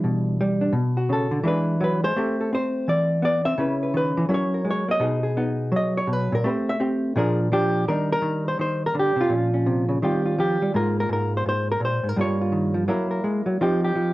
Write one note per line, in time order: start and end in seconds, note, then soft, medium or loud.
0.00 0.71 B2 medium
0.00 0.72 E3 medium
0.00 0.38 G3 medium
0.00 0.60 D4 soft
0.00 0.72 E4 soft
0.00 0.38 B4 medium
0.41 0.73 G3 medium
0.61 0.72 D4 soft
0.73 1.43 B2 medium
0.97 1.43 F#4 medium
1.09 1.31 C#3 medium
1.09 1.46 A4 medium
1.31 1.43 D3 medium
1.44 2.16 E3 medium
1.44 1.80 G#3 soft
1.44 2.14 D4 soft
1.44 2.18 E4 medium
1.48 1.82 B4 medium
1.80 2.03 F#3 medium
1.80 2.04 B4 medium
2.04 2.16 G#3 medium
2.04 2.52 C5 loud
2.16 3.57 A3 medium
2.16 2.52 C4 medium
2.16 3.58 G4 medium
2.16 2.40 A4 medium
2.41 2.53 A4 soft
2.53 3.22 C4 medium
2.53 2.89 C5 medium
2.88 3.57 E3 medium
2.88 3.24 D5 medium
3.22 3.45 B3 medium
3.22 3.45 D5 medium
3.45 3.58 C4 medium
3.45 3.94 E5 loud
3.58 4.28 C#3 medium
3.58 4.28 C#4 soft
3.58 4.29 E4 medium
3.58 3.81 B4 medium
3.83 3.95 B4 medium
3.94 4.17 D#3 medium
3.94 4.30 B4 medium
4.17 4.28 E3 medium
4.29 4.99 F#3 medium
4.29 4.64 C#4 medium
4.29 5.00 E4 medium
4.29 4.53 A#4 medium
4.34 4.68 C#5 medium
4.54 5.01 A#4 soft
4.65 4.88 G#3 medium
4.71 4.91 C#5 medium
4.88 5.00 A#3 medium
4.88 5.38 D#5 loud
5.00 6.06 B2 medium
5.00 5.36 B3 medium
5.00 5.36 D#4 medium
5.00 5.22 G#4 medium
5.23 6.31 G#4 soft
5.37 6.43 B3 medium
5.37 6.43 D#4 soft
5.72 6.42 F#3 medium
5.76 5.97 D#5 medium
5.97 6.13 C#5 loud
6.07 6.31 B2 medium
6.13 6.33 B4 medium
6.32 6.45 A#2 medium
6.32 6.49 A#4 loud
6.44 7.14 A3 medium
6.44 6.79 C4 medium
6.44 6.79 G4 medium
6.49 6.70 C5 medium
6.69 6.81 E5 loud
6.80 7.14 C4 medium
6.80 7.14 G4 medium
7.16 7.86 A#2 medium
7.16 7.51 F3 medium
7.16 7.51 D4 medium
7.16 7.39 G#4 medium
7.16 7.53 A#4 medium
7.52 7.87 F3 medium
7.52 7.86 D4 medium
7.52 7.88 G4 medium
7.88 8.21 D#3 medium
7.88 9.29 G3 soft
7.88 9.30 D4 soft
7.88 9.19 D#4 soft
7.88 8.10 A#4 medium
8.13 8.47 A#4 loud
8.22 8.58 D#3 medium
8.48 8.60 C5 loud
8.59 8.94 D#3 medium
8.59 8.83 C5 medium
8.86 8.97 A#4 loud
8.95 9.15 D3 medium
8.99 9.33 G4 medium
9.16 9.30 C3 medium
9.21 10.02 F4 medium
9.29 10.00 A#2 medium
9.29 10.02 F3 soft
9.29 9.52 C#4 soft
9.54 10.01 C#4 soft
9.66 9.88 C3 medium
9.88 10.02 C#3 medium
10.02 10.72 D#3 medium
10.02 10.38 G3 soft
10.02 10.73 C4 soft
10.02 10.25 F4 soft
10.02 10.39 G4 soft
10.25 10.76 F4 soft
10.38 10.61 F3 medium
10.38 10.75 G4 medium
10.62 10.74 G3 medium
10.74 11.08 G#2 medium
10.74 12.16 G#3 soft
10.74 12.17 A#3 soft
10.74 12.16 F4 medium
10.74 10.98 A#4 medium
11.00 11.11 A#4 medium
11.09 11.44 G#2 medium
11.09 11.34 A#4 medium
11.37 11.43 C5 medium
11.46 11.80 G#2 medium
11.46 11.70 C5 loud
11.72 11.83 A#4 loud
11.80 12.03 A#2 medium
11.85 12.09 C5 medium
12.03 12.16 G#2 medium
12.09 12.19 A#4 medium
12.16 12.88 G2 medium
12.16 12.74 G3 soft
12.16 12.87 A#3 soft
12.16 12.40 F4 soft
12.21 12.90 C#5 medium
12.41 12.88 F4 soft
12.52 12.75 D#3 medium
12.74 12.88 F3 medium
12.88 13.24 F#3 medium
12.88 13.60 A#3 medium
12.88 13.59 E4 medium
12.88 13.10 A#4 medium
13.11 13.58 A#4 medium
13.24 13.46 G#3 medium
13.46 13.59 F#3 medium
13.61 13.95 F3 medium
13.61 14.13 C4 medium
13.61 14.13 D#4 medium
13.61 13.83 G4 medium
13.85 14.13 G4 medium
13.96 14.13 F3 medium